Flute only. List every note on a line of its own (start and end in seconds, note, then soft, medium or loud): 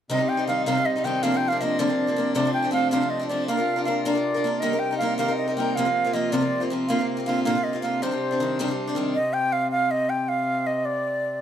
0.10 0.30 D#5 medium
0.29 0.47 G5 medium
0.48 0.65 F5 medium
0.66 0.87 F5 medium
0.86 1.06 D#5 medium
1.04 1.24 G5 medium
1.23 1.38 F5 medium
1.37 1.50 G5 medium
1.48 1.58 F5 loud
1.58 1.81 D#5 medium
1.58 1.62 F5 medium
1.79 2.35 D5 medium
2.35 2.53 D5 medium
2.54 2.72 G5 medium
2.73 2.91 F5 medium
2.91 3.11 F5 medium
3.10 3.28 D#5 medium
3.28 3.47 D5 medium
3.47 3.84 F5 medium
3.85 4.04 F5 medium
4.05 4.62 D5 medium
4.60 4.81 D#5 medium
4.79 4.97 G5 medium
4.98 5.17 F5 medium
5.18 5.36 F5 medium
5.37 5.55 D#5 medium
5.57 5.77 G5 medium
5.75 6.15 F5 medium
6.14 6.33 D#5 medium
6.32 6.63 D5 medium
6.88 7.06 F5 medium
7.26 7.43 F5 medium
7.44 7.65 F5 medium
7.64 7.82 D#5 medium
7.82 8.04 F5 medium
8.03 8.78 C5 medium
9.15 9.35 D#5 medium
9.33 9.54 G5 medium
9.53 9.71 F5 medium
9.71 9.92 F5 medium
9.91 10.11 D#5 medium
10.09 10.30 G5 medium
10.29 10.68 F5 medium
10.67 10.87 D#5 medium
10.85 11.41 D5 loud